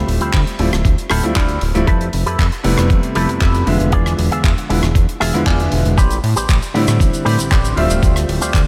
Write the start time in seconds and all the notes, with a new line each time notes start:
Already playing: F3 G3 A3 C4 E5
0.08 D1, open hi-hat
0.21 D2 E4 F4 G4 C5, closed hi-hat
0.33 D2, kick, clap, closed hi-hat
0.47 closed hi-hat
0.59 D1 F3 G3 A3 C4 E4, muted clean electric guitar stroke, open hi-hat
0.72 D1, muted clean electric guitar stroke, cross-stick, closed hi-hat
0.85 D2, kick, closed hi-hat
0.98 closed hi-hat
1.10 D1 E4 F4 G4 A4, cross-stick, open hi-hat
1.23 F3 G3 A3 C4 E4, closed hi-hat
1.36 D2 E4 F4 G4 D5, kick, clap, closed hi-hat
1.48 closed hi-hat
1.61 D1, open hi-hat
1.74 D1 F3 G3 A3 C4 E4, closed hi-hat
1.87 F2 E4 G4 A4 B4, kick, closed hi-hat
2.01 closed hi-hat
2.13 F1, open hi-hat
2.26 E4 G4 A4 B4, closed hi-hat
2.39 F2, kick, clap, closed hi-hat
2.52 closed hi-hat
2.63 F1 C3 G3 A3 B3 E4, muted clean electric guitar stroke, open hi-hat
2.78 F1, muted clean electric guitar stroke, cross-stick, closed hi-hat
2.90 F2, kick, closed hi-hat
3.03 closed hi-hat
3.15 F1 E4 G4 A4 B4, open hi-hat
3.29 closed hi-hat
3.40 F2 E4 G4 A4 B4, kick, clap, closed hi-hat
3.54 closed hi-hat
3.66 F1 D3 F3 G#3 B3 E5, open hi-hat
3.80 F1, closed hi-hat
3.92 E2 F4 G#4 D5, kick, closed hi-hat
4.06 cross-stick, closed hi-hat
4.18 E1, open hi-hat
4.31 E2 F4 G#4 E5, closed hi-hat
4.44 E2, kick, clap, closed hi-hat
4.58 closed hi-hat
4.69 E1 D3 F3 G#3 B3 E4, muted clean electric guitar stroke, open hi-hat
4.82 E1, muted clean electric guitar stroke, cross-stick, closed hi-hat
4.95 E2, kick, closed hi-hat
5.09 closed hi-hat
5.20 E1 F4 G#4 E5, cross-stick, open hi-hat
5.33 D3 F3 G#3 B3 E4, closed hi-hat
5.46 E2 F4 G#4 D5, kick, clap, closed hi-hat
5.59 D3 F3 G#3 B3 E5, closed hi-hat
5.72 E1, open hi-hat
5.85 E1, closed hi-hat
5.97 A1 G4 B4 C5 D5, kick, closed hi-hat, shaker
6.10 closed hi-hat, shaker
6.23 A2, open hi-hat
6.36 A1 G4 B4 C5 D5, closed hi-hat, shaker
6.49 A1, kick, clap, closed hi-hat, shaker
6.62 closed hi-hat, shaker
6.74 A2 D3 G3 C4 E4, muted clean electric guitar stroke, open hi-hat
6.87 A2, muted clean electric guitar stroke, cross-stick, closed hi-hat, shaker
7.00 A1, kick, closed hi-hat, shaker
7.13 closed hi-hat, shaker
7.25 A2 G4 B4 C5 D5, open hi-hat
7.39 A1, closed hi-hat, shaker
7.51 A1 G4 B4 C5 D5, kick, clap, closed hi-hat, shaker
7.65 closed hi-hat, shaker
7.76 D1 F3 G3 A3 C4 F4 G4 C5 E5, open hi-hat
7.90 D1, closed hi-hat, shaker
8.03 D2, kick, closed hi-hat, shaker
8.16 cross-stick, closed hi-hat, shaker
8.28 D1, open hi-hat
8.41 D2 F4 G4 C5 D5, closed hi-hat, shaker
8.54 D2, kick, clap, closed hi-hat, shaker